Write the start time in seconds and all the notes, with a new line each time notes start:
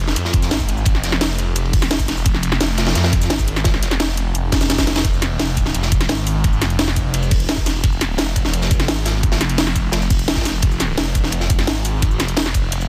Already playing: F1
0.08 snare
0.16 F2, closed hi-hat, ride, shaker
0.25 snare
0.33 kick, closed hi-hat, ride
0.42 snare, closed hi-hat, shaker
0.51 G#1, snare, closed hi-hat, ride, shaker
0.60 kick, shaker
0.69 closed hi-hat, ride
0.77 shaker
0.85 kick, closed hi-hat, ride, shaker
0.95 snare
1.03 F1, snare, closed hi-hat, ride, shaker
1.12 snare
1.21 snare, closed hi-hat, ride, shaker
1.38 closed hi-hat, ride
1.56 closed hi-hat, ride, shaker
1.65 ride
1.73 kick, closed hi-hat, open hi-hat, shaker
1.82 snare, closed hi-hat, shaker
1.91 F1, snare, closed hi-hat, ride, shaker
2.00 kick, closed hi-hat, shaker
2.08 snare, closed hi-hat, ride
2.17 shaker
2.26 F1, kick, closed hi-hat, ride, shaker
2.34 snare
2.43 closed hi-hat, ride, shaker
2.52 snare
2.60 F1, snare, closed hi-hat, ride, shaker
2.77 snare, closed hi-hat, ride
2.86 snare, ride
2.95 F2, snare, closed hi-hat, ride, shaker
3.04 snare, ride
3.13 kick, closed hi-hat, ride
3.22 snare, closed hi-hat, shaker
3.30 G#1, snare, closed hi-hat, ride, shaker
3.39 kick, shaker
3.48 closed hi-hat, ride
3.56 snare, shaker
3.64 kick, snare, closed hi-hat, ride, shaker
3.74 snare
3.83 F1, snare, closed hi-hat, ride, shaker
3.91 snare, closed hi-hat
4.00 snare, closed hi-hat, ride, shaker
4.17 closed hi-hat, ride, shaker
4.35 F1, closed hi-hat, shaker
4.52 kick, snare, closed hi-hat, open hi-hat, shaker
4.61 snare, closed hi-hat, shaker
4.70 snare, closed hi-hat, ride, shaker
4.78 kick, snare, closed hi-hat, shaker
4.87 F1, snare, closed hi-hat, ride
4.95 snare, ride, shaker
5.04 F1, kick, closed hi-hat, ride
5.13 shaker
5.22 snare, closed hi-hat, ride, shaker
5.39 F1, snare, closed hi-hat, ride
5.57 kick, closed hi-hat, ride, shaker
5.66 snare
5.74 F1, closed hi-hat, ride
5.82 snare, shaker
5.91 kick, closed hi-hat, ride, shaker
6.00 snare, closed hi-hat
6.09 G#1, snare, closed hi-hat, ride
6.18 shaker
6.27 open hi-hat, ride, shaker
6.44 kick, closed hi-hat, ride
6.53 shaker
6.61 F1, snare, closed hi-hat, ride, shaker
6.70 closed hi-hat
6.79 snare, closed hi-hat, ride
6.88 snare, shaker
6.96 F1, kick, closed hi-hat, ride, shaker
7.14 closed hi-hat, ride
7.22 ride, shaker
7.31 kick, closed hi-hat, open hi-hat, shaker
7.40 closed hi-hat
7.49 F1, snare, closed hi-hat, ride
7.58 kick, shaker
7.66 snare, open hi-hat, ride, shaker
7.84 F1, kick, closed hi-hat, ride
7.92 shaker
8.01 snare, closed hi-hat, ride, shaker
8.18 F1, snare, closed hi-hat, ride
8.36 kick, closed hi-hat, ride, shaker
8.45 snare
8.53 F1, closed hi-hat, ride
8.62 snare, shaker
8.71 kick, closed hi-hat, ride, shaker
8.79 snare, closed hi-hat
8.88 G#1, snare, closed hi-hat, ride
8.97 shaker
9.05 snare, open hi-hat, ride, shaker
9.23 kick, closed hi-hat, ride
9.32 snare, ride, shaker
9.41 F1, snare, closed hi-hat, shaker
9.49 closed hi-hat, ride
9.58 snare, closed hi-hat, ride
9.67 snare, shaker
9.76 F1, kick, closed hi-hat, ride, shaker
9.92 snare, closed hi-hat, ride
10.02 ride, shaker
10.10 kick, closed hi-hat, open hi-hat, shaker
10.19 closed hi-hat
10.28 snare, closed hi-hat, ride
10.32 snare, ride
10.36 kick, snare, ride, shaker
10.41 snare, ride
10.45 snare, open hi-hat, ride, shaker
10.62 F1, kick, closed hi-hat, ride
10.71 shaker
10.80 snare, closed hi-hat, ride, shaker
10.97 F1, snare, closed hi-hat, ride
11.15 kick, closed hi-hat, ride, shaker
11.24 snare
11.32 F1, closed hi-hat, ride
11.41 snare, shaker
11.50 kick, closed hi-hat, ride, shaker
11.58 snare, closed hi-hat
11.67 G#1, snare, closed hi-hat, ride
11.76 shaker
11.85 open hi-hat, ride, shaker
12.02 kick, closed hi-hat, ride
12.11 shaker
12.19 F1, snare, closed hi-hat, ride, shaker
12.28 closed hi-hat
12.37 snare, closed hi-hat, ride
12.46 snare, shaker
12.54 F1, kick, closed hi-hat, ride, shaker
12.72 closed hi-hat, ride
12.81 ride, shaker